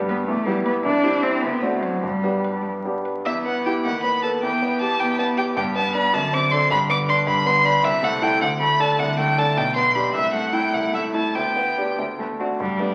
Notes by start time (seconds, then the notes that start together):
Already playing: G2 B3 D4 G4
0.09 B3 B4
0.27 E2 A3
0.46 G3 B3 E4 G4
0.65 B3 B4
0.84 C2 D4
1.04 C4 E4 G4
1.23 C4 E5
1.42 D2 B3
1.62 A3 C4 D4 F#4
1.83 F#3 C5
2.04 G2 G3
2.24 B3 D4 G4
2.45 B4
2.85 B3 D4 G4
3.06 B4
3.26 E2 B3 E5
3.46 B3 F#5
3.66 E4 G4 G5
3.84 D#2 B3 F#5
4.03 B3 B5
4.23 A4 B4 A5
4.43 E2 B3 G5
4.62 B3
4.81 G4 A5
5.00 E2 B3 G5
5.19 B3 A5
5.37 G4 G5
5.57 G2 B3 G5
5.75 B3 A5
5.95 D4 B4 B5
6.13 F#2 D3 A5
6.33 C4 D6
6.52 D4 A4 C6
6.70 G2 D3 B5
6.89 B3 D6
7.09 D4 C6
7.26 G2 D3 B5
7.46 B3 C6
7.64 D4 B5
7.83 C2 C3 E5
8.03 A3 F#5
8.22 E4 A4 G5
8.41 D2 D3 F#5
8.60 A3 B5
8.79 D4 A4 A5
8.99 C2 D3 F#5
9.18 A3 G5
9.38 D4 A4 A5
9.56 B1 B2 G5
9.76 B3 C6
9.95 D4 G4 B5
10.14 C2 A3 E5
10.33 A3 F#5
10.53 E4 G5
10.74 C2 F#5
10.93 A3 E5
11.14 E4 A5
11.35 D2 B3 G5
11.56 B3
11.78 D4 G4
11.98 D2 A3
12.19 A3 B3
12.39 C4 D4 F#4
12.60 G2 G3 D4
12.80 A3 B3 D4 G4